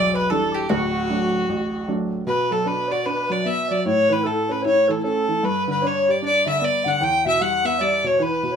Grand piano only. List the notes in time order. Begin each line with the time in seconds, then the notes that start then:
Already playing: E1 B1
0.31 E3 G3 D4
0.70 D1 D2
1.10 F#3 A3 D4
1.49 A1
1.88 F#3 A3 D4
2.27 B2
2.51 F#3
2.66 D4
2.91 F#4
3.06 D4
3.30 F#3
3.46 B3
3.71 F#3
3.86 A2
4.10 E3
4.25 E4
4.49 C#4
4.65 E4
4.89 E3
5.04 C#4
5.28 E3
5.43 G2
5.68 D3
5.83 D4
6.08 G4
6.22 D4
6.47 D3
6.61 B3
6.86 D3
7.01 E2
7.26 B2
7.41 G3
7.65 B3
7.81 G3
8.04 B2
8.20 E3
8.43 B2